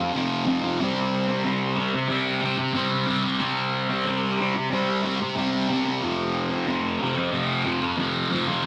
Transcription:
Already playing: F2
0.14 F2 C3 F3
0.45 F2 C3 F3
0.62 C3 F3
0.80 C3 G3 C4
1.28 G3 C4
1.45 C3 G3 C4
1.78 C3 G3 C4
1.95 muted distorted electric guitar stroke
2.09 C3 G3 C4
2.42 C3 G3
2.46 C4
2.59 muted distorted electric guitar stroke
2.74 C3 G3 C4
3.07 C3 G3 C4
3.23 G3 C4
3.40 C3 G3 C4
3.89 G3 C4
4.05 C3 G3 C4
4.38 C3 G3 C4
4.55 muted distorted electric guitar stroke
4.71 C3 G3 C4
5.03 C3 G3 C4
5.21 muted distorted electric guitar stroke
5.36 C3 G3 C4
5.68 C3 G3 C4
5.85 G3 C4
6.01 F2 C3 F3
6.50 C3 F3
6.67 F2 C3 F3
7.00 F2 C3 F3
7.17 muted distorted electric guitar stroke
7.32 F2 C3 F3
7.65 F2 C3 F3
7.82 muted distorted electric guitar stroke
7.98 F2 C3 F3
8.30 F2 C3 F3
8.48 C3 F3

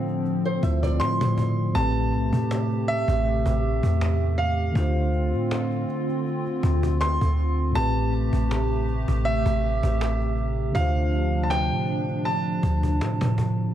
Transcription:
Already playing: A2 D3 F3 A3 C4 D4 F4 C5
0.08 cajon slap
0.25 cajon slap
0.45 C5, cajon slap
0.61 D2 D3 A3 E4 F4 E5, cajon bass
0.65 C5
0.83 D5, cajon bass
1.00 A2 C6, cajon slap
1.21 A2, cajon bass, cajon slap
1.38 cajon bass
1.71 A2 A3 A5
1.75 A1 C3 A3 C4 G4, cajon bass
1.80 B4
1.96 cajon slap
2.13 B1, cajon slap
2.33 A2, cajon bass
2.51 cajon slap
2.71 cajon slap
2.88 E5, cajon slap
3.08 A1, cajon bass
3.26 cajon slap
3.46 A1, cajon bass
3.83 E2, cajon bass
4.01 cajon slap
4.21 cajon slap
4.38 F5, cajon slap
4.71 D3 A3 F4, cajon bass
4.76 D2 D3 C4 D4 F4
4.80 C5
4.96 cajon slap
5.13 cajon slap
5.33 A2, cajon slap
5.51 cajon slap
5.71 cajon slap
5.88 cajon slap
6.09 cajon slap
6.26 cajon slap
6.46 cajon slap
6.63 D2, cajon bass
6.83 cajon bass
7.01 C6, cajon slap
7.21 D2, cajon bass
7.71 A2 A3 A5, cajon bass
7.76 A1 C3 A3 C4 G4
7.80 B4
7.96 cajon slap
8.13 cajon slap
8.33 A1, cajon bass
8.51 cajon slap
8.71 cajon slap
8.88 cajon slap
9.08 A1, cajon bass
9.25 E5, cajon slap
9.46 A1, cajon bass
9.83 A1, cajon bass
10.01 cajon slap
10.21 cajon slap
10.38 cajon slap
10.71 D3 A3 F5
10.75 D2 F3 D4 F4, cajon bass
10.80 C5
10.96 cajon slap
11.13 cajon slap
11.33 cajon slap
11.43 A5
11.50 G5, cajon slap
11.71 A2, cajon slap
11.88 cajon slap
12.08 cajon slap
12.25 A5, cajon slap
12.46 cajon slap
12.63 D2, cajon bass
12.83 cajon bass
13.01 A2, cajon slap
13.21 A2, cajon bass, cajon slap
13.38 cajon bass

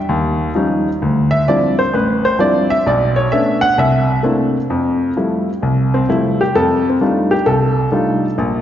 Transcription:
0.09 D#2
0.55 F3 G3 C#4 D#4
1.02 D2
1.31 E5
1.48 F3 G3 C4 D4 E4 D5
1.79 C5
1.93 A1 B4
2.25 C5
2.39 F3 G3 C4 D4 E4 D5
2.70 E5
2.86 B1 D5
3.16 C#5
3.32 A3 B3 C#4 D4 E5
3.61 F#5
3.78 C2 E5
4.23 A3 A#3 C4 D4 E4
4.70 F2
5.17 F3 G3 A3 E4
5.62 C2
5.94 C4
6.09 F3 G3 A3 E4
6.41 G4
6.55 F2 A4
6.90 C4
7.01 G3 A3 D4 D#4 F4
7.31 G4
7.46 C2 A4
7.92 G3 A3 D4 D#4 F4
8.38 A#1

